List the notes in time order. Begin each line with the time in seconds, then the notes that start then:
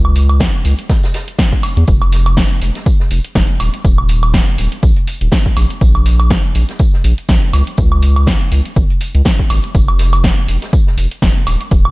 Already playing: C#2
0.05 high woodblock
0.16 open hi-hat, tambourine
0.29 closed hi-hat, high woodblock
0.40 kick, snare, closed hi-hat, tambourine
0.54 closed hi-hat
0.65 C#2, open hi-hat, tambourine
0.79 closed hi-hat
0.89 kick, snare, closed hi-hat, tambourine
1.03 snare, tambourine
1.14 snare, open hi-hat, tambourine
1.28 closed hi-hat
1.38 kick, snare, closed hi-hat, tambourine
1.52 kick
1.63 open hi-hat, tambourine, high woodblock
1.77 E2, closed hi-hat
1.87 F1, kick, closed hi-hat, tambourine
2.01 closed hi-hat, high woodblock
2.12 snare, open hi-hat, tambourine
2.26 closed hi-hat, high woodblock
2.37 kick, snare, closed hi-hat, tambourine
2.62 F1, open hi-hat, tambourine
2.75 snare, closed hi-hat
2.86 kick, closed hi-hat, tambourine
3.00 snare
3.11 F1, open hi-hat, tambourine
3.25 closed hi-hat
3.35 F1, kick, snare, closed hi-hat, tambourine
3.60 D#1, open hi-hat, tambourine, high woodblock
3.74 closed hi-hat
3.85 D#1, kick, closed hi-hat, tambourine
3.98 high woodblock
4.09 open hi-hat, tambourine
4.23 closed hi-hat, high woodblock
4.34 kick, snare, closed hi-hat, tambourine
4.47 closed hi-hat
4.58 D#1, open hi-hat, tambourine
4.72 closed hi-hat
4.83 A#1, kick, closed hi-hat, tambourine
4.96 closed hi-hat
5.07 open hi-hat, tambourine
5.21 D#1, closed hi-hat
5.32 kick, snare, closed hi-hat, tambourine
5.46 kick
5.57 A#1, open hi-hat, tambourine, high woodblock
5.70 closed hi-hat
5.81 A#1, kick, closed hi-hat, tambourine
5.95 closed hi-hat, high woodblock
6.06 snare, open hi-hat, tambourine
6.19 closed hi-hat, high woodblock
6.30 kick, snare, closed hi-hat, tambourine
6.55 A#1, open hi-hat, tambourine
6.69 snare, closed hi-hat
6.79 kick, closed hi-hat, tambourine
6.93 snare
7.04 A#1, open hi-hat, tambourine
7.18 closed hi-hat
7.29 A#1, kick, snare, closed hi-hat, tambourine
7.53 C#2, open hi-hat, tambourine, high woodblock
7.67 closed hi-hat
7.78 C#2, kick, closed hi-hat, tambourine
7.92 high woodblock
8.03 open hi-hat, tambourine
8.16 closed hi-hat, high woodblock
8.27 kick, snare, closed hi-hat, tambourine
8.41 closed hi-hat
8.52 C#2, open hi-hat, tambourine
8.65 closed hi-hat
8.76 G#1, kick, closed hi-hat, tambourine
8.90 closed hi-hat
9.01 open hi-hat, tambourine
9.15 C#2, closed hi-hat
9.25 kick, snare, closed hi-hat, tambourine
9.39 kick
9.50 G#1, open hi-hat, tambourine, high woodblock
9.64 closed hi-hat
9.75 F1, kick, closed hi-hat, tambourine
9.88 closed hi-hat, high woodblock
9.99 snare, open hi-hat, tambourine
10.13 closed hi-hat, high woodblock
10.24 kick, snare, closed hi-hat, tambourine
10.48 F1, open hi-hat, tambourine
10.62 snare, closed hi-hat
10.73 kick, closed hi-hat, tambourine
10.87 snare
10.98 F1, open hi-hat, tambourine
11.11 closed hi-hat
11.22 F1, kick, snare, closed hi-hat, tambourine
11.47 D#1, open hi-hat, tambourine, high woodblock
11.61 closed hi-hat
11.71 D#1, kick, closed hi-hat, tambourine
11.85 high woodblock